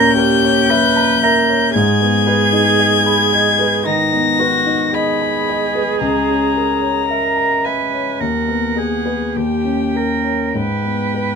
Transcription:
Already playing: A#2 C#4 A#4 C#5 E5 A#5 G6
0.18 G4 A#4
0.45 C#5
0.70 B4 E5
0.96 A#5
1.23 A#4 E5
1.49 C#5
1.75 G#2 G#4 G#6
2.01 B3
2.27 B4
2.53 D#4
2.79 D#5
3.06 B5
3.32 D#5
3.59 B4
3.86 D#3 D#4 A#6
4.13 B3
4.40 F#4 B4
4.66 D#4
4.94 G#4 D#5 B5
5.21 B5
5.49 D#5
5.75 B4
6.01 C#2 A#5
6.29 C#4
6.56 A#4
6.82 C#5
7.09 A#4 E5
7.37 A#5
7.65 B4 E5 G#5
7.93 C#5
8.20 D#2 A#4 F#5
8.48 B3
8.76 G#4
9.06 B4
9.36 D#2 G4 G5
9.65 C#4
9.95 A#4
10.23 C#5
10.54 G#2 B4 G5
10.84 B3
11.14 B4

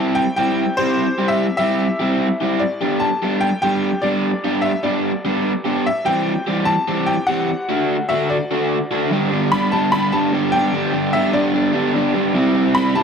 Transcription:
Already playing: G3 C4 E4 G4 A5
0.15 G5
0.36 G3 C4 E4 G4 G5
0.77 G3 C4 E4 G4 C5
1.19 G3 C4 E4 G4
1.28 E5
1.57 G3 C4 E4 G4 E5
2.00 G3 C4 E4 G4
2.41 G3 C4 E4 G4
2.59 D5
2.81 G3 B3 D4 G4
3.00 A5
3.22 G3 B3 D4 G4
3.41 G5
3.62 G3 B3 D4 G4 G5
4.02 G3 B3 D4 G4 D5
4.45 G3 B3 D4 G4
4.62 E5
4.83 G3 B3 D4 G4 D5
5.25 G3 B3 D4 G4
5.65 G3 B3 D4 G4
5.87 E5
6.06 E3 G3 C4 G4 G5
6.47 E3 G3 C4 G4
6.65 A5
6.88 E3 G3 C4 G4
7.06 G5
7.27 E3 G3 C4 G4 F#5
7.69 D3 A3 D4 F#4
8.09 D3 A3 D4 F#4 E5
8.30 D5
8.51 D3 A3 D4 F#4
8.91 D3 A3 D4 F#4
9.11 G2 D3 G3 B3 D4 G4
9.31 G3 B3 D4 G4
9.52 G3 B3 D4 G4 B5
9.72 G2 D3 G3 B3 D4 G4 A5
9.92 G3 B3 D4 G4 B5
10.12 G2 D3 G3 B3 D4 G4 A5
10.32 G3 B3 D4 G4
10.52 G3 B3 D4 G4 G5
10.73 G2 D3 G3 B3 D4 G4
10.93 G3 B3 D4 G4
11.13 G3 B3 D4 G4 E5
11.33 G2 D3 G3 B3 D4 G4 D5
11.53 G3 B3 D4 G4
11.73 G2 D3 G3 B3 D4 G4
11.94 G3 B3 D4 G4
12.14 G3 B3 D4 G4
12.34 C3 G3 C4 E4 G4
12.55 C4 E4 G4
12.75 G3 C4 E4 G4 B5
12.95 C3 G3 C4 E4 G4 A5

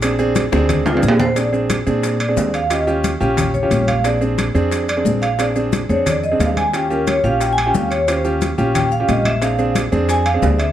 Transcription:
Already playing: A#1
0.02 C4 D4 G#4, high bongo, high conga, high timbale, maracas
0.19 C4 D4 G#4, high bongo, high conga, maracas
0.35 high bongo, high conga, high timbale, maracas
0.52 D2 C4 D4 G#4, high bongo, high conga, maracas
0.69 high bongo, high conga, low conga, high timbale, maracas
0.86 F4, low bongo, high conga, high timbale, maracas
0.94 C4 D4 G#4, high timbale
1.03 A#1 G#4, high conga, maracas
1.08 low timbale
1.20 C5, low bongo, low conga, low timbale, maracas
1.36 C4 D4 G#4 D5, high bongo, high conga, high timbale, maracas
1.53 C4 D4 G#4, high bongo, high conga, maracas
1.70 high bongo, high conga, high timbale, maracas
1.87 A#2 C4 D4 G#4, high bongo, high conga, maracas
2.03 high bongo, high conga, high timbale, maracas
2.20 D5, high conga, high timbale, maracas
2.28 C4 D4 G#4
2.37 D#2, high bongo, low bongo, high conga, low timbale, maracas
2.54 F5, high bongo, high conga, high timbale, maracas
2.70 C#4 F4 G4 D#5, high bongo, high conga, high timbale, maracas
2.87 C#4 F4 G4, high bongo, high conga, maracas
3.04 high bongo, high conga, high timbale, maracas
3.20 A#1 C#4 F4 G4, high bongo, high conga, maracas
3.37 high bongo, high conga, low conga, high timbale, maracas
3.54 C#5, high conga, low conga, maracas
3.63 C#4 F4 G4
3.71 A#1, high bongo, low bongo, high conga, high timbale, maracas
3.88 F5, high bongo, high conga, high timbale, maracas
4.04 C4 D4 G#4 D5, high bongo, high timbale, maracas
4.21 C4 D4 G#4, high bongo, high conga, maracas
4.38 high bongo, high conga, high timbale, maracas
4.55 F2 C4 D4 G#4, high bongo, high conga, maracas
4.71 high bongo, high conga, high timbale, maracas
4.89 D5, high conga, high timbale, maracas
4.97 C4 D4 G#4
5.05 A#1, high bongo, low bongo, high conga, maracas
5.22 F5, high bongo, high timbale, maracas
5.39 C4 D4 G#4 D5, high bongo, high conga, high timbale, maracas
5.56 C4 D4 G#4, high bongo, high conga, maracas
5.73 high bongo, high conga, high timbale, maracas
5.89 F2 C4 D4 G#4 C#5, high bongo, maracas
6.06 D5, high bongo, high conga, low conga, high timbale, maracas
6.23 D#5, high conga, maracas
6.32 C4 D4 G#4
6.39 D#2 F5, high bongo, low bongo, high conga, high timbale, low timbale, maracas
6.57 G#5, high bongo, high conga, high timbale, maracas
6.74 C#4 F4 G4 G5, high bongo, high conga, high timbale, maracas
6.90 C#4 F4 G4 A#4, high bongo, high conga, maracas
7.07 C#5, high bongo, high conga, high timbale, maracas
7.24 A#1 C#4 F4 G4 F5, high bongo, high conga, maracas
7.41 G5, high bongo, high conga, high timbale, maracas
7.53 G#5
7.58 high conga, high timbale, maracas
7.63 C#4 F4 G4 G5
7.74 D#2 F5, high bongo, low bongo, high conga, low timbale, maracas
7.91 C#5, high bongo, high conga, high timbale, maracas
8.08 C#4 F4 G4 C5, high bongo, high conga, high timbale, maracas
8.25 C#4 F4 G4, high bongo, high conga, maracas
8.41 high bongo, high conga, high timbale, maracas
8.58 A#1 C#4 F4 G4, high conga, maracas
8.75 G5, high bongo, high conga, low conga, high timbale, maracas
8.91 F5, high conga, maracas
9.00 C#4 F4 G4
9.09 A#1 D#5, high bongo, low bongo, high conga, high timbale, maracas
9.25 E5, high bongo, high conga, high timbale, maracas
9.42 C4 D4 G#4 F5, high bongo, high timbale, maracas
9.58 C4 D4 G#4, high bongo, high conga, maracas
9.75 high bongo, high conga, high timbale, maracas
9.92 F2 C4 D4 G#4, high bongo, high conga, maracas
10.09 G#5, high bongo, high conga, high timbale, maracas
10.26 F5, high conga, high timbale, maracas
10.34 C4 D4 G#4
10.42 D2 D5, high bongo, low bongo, high conga, low timbale, maracas
10.59 E5, high bongo, high timbale, maracas

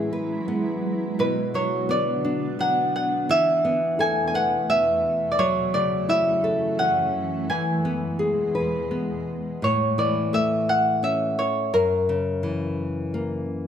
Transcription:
Already playing: E3 F#3 G#3 B3 E4 G#4 E5
0.13 B4
0.48 B3
1.19 B2 D3 B3 D4 B4
1.54 F#3 C#5
1.89 B3 D5
2.25 D4
2.59 F#3 F#5
2.96 F#5
3.29 E2 B2 E3 A3 E5
3.65 B3
3.99 A4 G#5
4.27 G#5
4.34 B4 F#5
4.69 B3 E5
5.32 D5
5.39 F#2 E3 F#3 C#5
5.74 C#3 D5
6.09 E4 E5
6.44 A4
6.79 C#4 F#5
7.50 E2 B2 E3 G#3 G#5
7.85 B3
8.19 G#4
8.55 B4
8.91 B3
9.62 A2 C#5
9.98 E3 D5
10.33 A3 E5
10.69 F#5
11.03 C#4 E5
11.39 C#5
11.74 F#2 A#4
12.09 C#3
12.43 E3
13.14 A#3

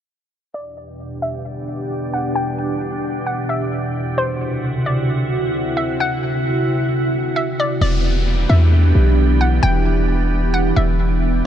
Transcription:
0.54 E2 B2 D4 G4 D5
1.22 E5
2.14 F#5
2.35 G5
3.27 F#5
3.49 E5
4.18 D2 C3 E4 F#4 C5
4.86 D5
5.77 E5
6.00 F#5
7.36 E5
7.60 D5
7.81 E1 E3 B3 D4 G4 D5, downlifter
8.49 E2 E5
8.95 B1
9.41 F#5
9.63 E1 G5
10.54 F#5
10.76 E1 E5

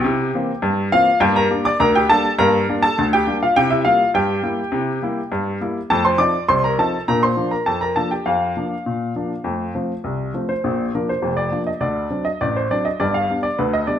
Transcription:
Already playing: G4 G5
0.04 C3 E4
0.34 E3 A#3 C4
0.62 G2
0.92 E3 A#3 C4 F4 F5
1.20 G2 A#3 G4 G5
1.36 A#4 A#5
1.50 G3 A#3 D4
1.65 D5 D6
1.80 D2 A#4 A#5
1.95 G4 G5
2.10 G3 A#3 D4 A4 A5
2.38 G2 A#3 A#4 A#5
2.69 G3 A#3 D4
2.83 A4 A5
2.98 D2
3.13 G4 G5
3.27 G3 A#3 D4
3.43 F4 F5
3.56 C3 E4 G4 G5
3.71 E4 E5
3.84 G3 A#3 E4 F4 F5
4.14 G2 G4 G5
4.42 G3 A#3 E4
4.72 C3 E4
5.02 G3 A#3 E4
5.32 G2
5.61 G3 A#3 E4
5.90 F2 A3 A4 A5
6.05 C5 C6
6.18 F3 C4 D#4 D5 D6
6.48 C2 C5 C6
6.64 A#4 A#5
6.78 F3 C4 D#4 A4 A5
7.08 A#2 D4 A#4 A#5
7.23 C5 C6
7.37 F3 A#3 D4
7.51 A#4 A#5
7.66 F2 A4 A5
7.81 A#4 A#5
7.96 F3 A#3 D4 A4 A5
8.11 G4 G5
8.26 F2 F4 F5
8.57 F3 A#3 D4
8.86 A#2
9.16 F3 A#3 D4
9.44 F2 A3
9.75 F3 A3 C4
10.04 C2
10.34 F3 A3 C4
10.49 C5
10.64 A#1 A#2
10.95 F3 A#3 D4 A#4
11.09 C5
11.22 F1 F2
11.37 D5
11.52 F3 A#3 D4
11.67 D#5
11.80 D2 D3 D5
12.10 F#3 C4 D4
12.25 D#5
12.41 A1 A2 D5
12.57 C5
12.71 F#3 C4 D4 D5
12.85 D#5
13.00 G1 G2 D5
13.14 F5
13.30 G3 B3 D4
13.43 D5
13.59 D2 D3 B4
13.73 D#5
13.87 G3 B3 D4 D5

